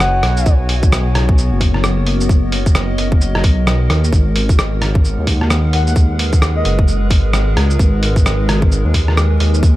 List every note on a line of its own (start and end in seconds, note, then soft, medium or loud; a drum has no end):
0.00 0.22 F#1 medium
0.00 5.66 F#4 medium
0.00 5.67 C#5 medium
0.00 0.46 E5 medium
0.00 0.52 F#5 loud
0.00 1.08 G#5 medium
0.00 0.46 B5 medium
0.00 cross-stick loud
0.00 shaker medium
0.23 0.45 B1 medium
0.23 cross-stick medium
0.23 open hi-hat medium
0.37 shaker medium
0.45 1.50 B1 loud
0.45 4.74 B3 loud
0.45 kick loud
0.45 shaker medium
0.69 open hi-hat medium
0.83 kick loud
0.83 shaker medium
0.92 cross-stick loud
0.92 shaker medium
1.07 9.76 A#4 medium
1.15 cross-stick medium
1.15 open hi-hat medium
1.15 shaker soft
1.29 kick loud
1.38 shaker medium
1.52 2.06 F#1 medium
1.61 kick medium
1.61 open hi-hat medium
1.68 5.25 D#5 medium
1.74 cross-stick soft
1.84 cross-stick loud
1.84 shaker medium
2.07 2.97 F#1 medium
2.07 open hi-hat medium
2.21 shaker medium
2.29 kick loud
2.29 shaker medium
2.52 open hi-hat medium
2.66 kick loud
2.66 shaker medium
2.75 cross-stick loud
2.75 shaker medium
2.98 3.45 F#1 medium
2.98 open hi-hat medium
2.98 shaker soft
3.12 kick loud
3.21 shaker medium
3.35 cross-stick medium
3.44 3.89 B1 medium
3.44 kick loud
3.44 open hi-hat medium
3.67 cross-stick loud
3.67 shaker medium
3.90 4.12 D#2 medium
3.90 cross-stick medium
3.90 open hi-hat medium
4.04 shaker medium
4.13 5.16 G#1 loud
4.13 9.76 G#3 medium
4.13 kick loud
4.13 shaker medium
4.36 open hi-hat medium
4.46 9.76 G#4 medium
4.46 8.47 F#5 medium
4.46 kick loud
4.46 shaker medium
4.59 cross-stick loud
4.59 shaker medium
4.82 cross-stick medium
4.82 open hi-hat medium
4.82 shaker soft
4.95 kick loud
5.05 9.76 B4 medium
5.05 shaker medium
5.18 5.72 D#2 medium
5.27 kick medium
5.27 open hi-hat medium
5.41 cross-stick soft
5.50 cross-stick loud
5.50 shaker medium
5.73 6.64 D#2 medium
5.73 5.82 F#5 medium
5.73 open hi-hat medium
5.87 5.93 F#5 medium
5.87 shaker medium
5.96 kick loud
5.96 shaker medium
6.19 open hi-hat medium
6.33 kick loud
6.33 shaker medium
6.42 cross-stick loud
6.42 shaker medium
6.56 6.80 D#5 loud
6.65 7.12 F#1 medium
6.65 open hi-hat medium
6.65 shaker soft
6.79 kick loud
6.88 shaker medium
7.10 7.55 G#1 medium
7.10 kick loud
7.10 open hi-hat medium
7.33 cross-stick loud
7.33 shaker medium
7.56 7.78 C#2 medium
7.56 cross-stick medium
7.56 open hi-hat medium
7.70 shaker medium
7.79 8.83 G#1 loud
7.79 kick loud
7.79 shaker medium
8.03 open hi-hat medium
8.16 kick loud
8.16 shaker medium
8.26 cross-stick loud
8.26 shaker medium
8.36 9.76 G#5 medium
8.49 cross-stick medium
8.49 open hi-hat medium
8.49 shaker soft
8.62 kick loud
8.72 shaker medium
8.85 9.38 D#2 medium
8.94 kick medium
8.94 open hi-hat medium
9.08 cross-stick soft
9.17 cross-stick loud
9.17 shaker medium
9.40 9.76 D#2 medium
9.40 open hi-hat medium
9.54 shaker medium
9.63 kick loud
9.63 shaker medium